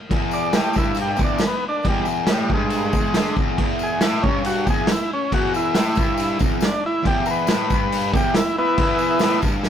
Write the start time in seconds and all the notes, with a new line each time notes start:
0.10 E2, kick, crash
0.31 D5, tambourine
0.53 A2 G4, snare, tambourine, crash
0.73 G2, kick, tambourine
0.77 E4
0.95 tambourine, crash
1.02 G4
1.17 E2, kick, tambourine
1.24 D4
1.38 snare, tambourine, crash
1.47 B3
1.69 D4
1.83 E2, kick, tambourine, crash
1.89 G3
2.05 tambourine
2.27 A2, snare, tambourine, crash
2.33 G3
2.50 G2, kick
2.54 G#3
2.70 tambourine, crash
2.93 E2, kick, tambourine
3.14 D3, snare, tambourine, crash
3.36 E2, kick, tambourine
3.58 E2, kick, crash
3.79 tambourine
3.83 G#4
4.01 A2 E4, snare, tambourine, crash
4.23 G2 C#4, kick
4.45 F#4, tambourine, crash
4.66 E2 G4, kick, tambourine
4.70 G#4
4.87 snare, tambourine, crash
4.92 E4
5.13 C#4
5.32 E2 F#4, kick, crash
5.54 E4, tambourine
5.75 A2, snare, tambourine, crash
5.95 G2, kick, tambourine
6.17 tambourine, crash
6.39 E2, kick, tambourine
6.61 snare, tambourine, crash
6.65 D4
6.86 E4
7.03 E2 G4, kick, crash
7.26 A#4, tambourine
7.31 B4
7.47 A2, snare, tambourine, crash
7.70 G2, kick, tambourine
7.92 tambourine, crash
8.13 E2 G4, kick, tambourine
8.34 E4, snare, tambourine, crash
8.58 B3 E4
8.78 E2, kick, tambourine, crash
8.98 tambourine
9.19 A2, snare, tambourine, crash
9.41 G2, kick, tambourine
9.63 snare, tambourine